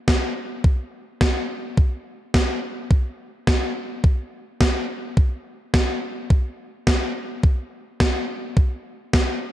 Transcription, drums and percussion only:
0.08 kick, snare
0.64 kick
1.21 kick, snare
1.77 kick
2.34 kick, snare
2.91 kick
3.47 kick, snare
4.04 kick
4.61 kick, snare
5.17 kick
5.74 kick, snare
6.30 kick
6.87 kick, snare
7.43 kick
8.00 kick, snare
8.57 kick
9.13 kick, snare

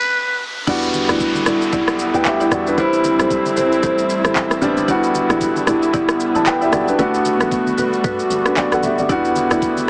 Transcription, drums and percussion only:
0.67 kick, crash, low conga, shaker
0.83 shaker
0.94 high conga, shaker
1.09 cross-stick, shaker
1.20 kick, shaker
1.35 high conga, shaker
1.46 cross-stick, high conga, low conga, shaker
1.62 shaker
1.72 kick, low conga, shaker
1.88 cross-stick, shaker
1.99 shaker
2.14 shaker
2.25 kick, clap, shaker
2.40 shaker
2.51 cross-stick, high conga, low conga, shaker
2.67 shaker
2.78 kick, low conga, shaker
2.93 shaker
3.04 high conga, shaker
3.19 cross-stick, shaker
3.30 kick, shaker
3.45 high conga, shaker
3.57 high conga, low conga, shaker
3.72 shaker
3.83 kick, low conga, shaker
3.98 shaker
4.10 shaker
4.25 cross-stick, shaker
4.36 kick, clap, shaker
4.51 cross-stick, shaker
4.62 high conga, low conga, shaker
4.77 shaker
4.88 kick, low conga, shaker
5.04 shaker
5.15 high conga, shaker
5.30 cross-stick, shaker
5.41 kick, shaker
5.56 high conga, shaker
5.67 cross-stick, high conga, low conga, shaker
5.83 shaker
5.93 kick, low conga, shaker
6.09 cross-stick, shaker
6.20 shaker
6.35 shaker
6.46 kick, clap, shaker
6.62 shaker
6.72 cross-stick, high conga, low conga, shaker
6.88 shaker
6.99 kick, low conga, shaker
7.14 shaker
7.25 high conga, shaker
7.40 cross-stick, shaker
7.51 kick, shaker
7.67 high conga, shaker
7.78 high conga, low conga, shaker
7.93 shaker
8.04 kick, low conga, shaker
8.19 shaker
8.31 shaker
8.46 cross-stick, shaker
8.57 kick, clap, shaker
8.72 cross-stick, shaker
8.83 high conga, low conga, shaker
8.98 shaker
9.09 kick, low conga, shaker
9.25 shaker
9.36 high conga, shaker
9.51 cross-stick, shaker
9.62 kick, shaker
9.77 high conga, shaker

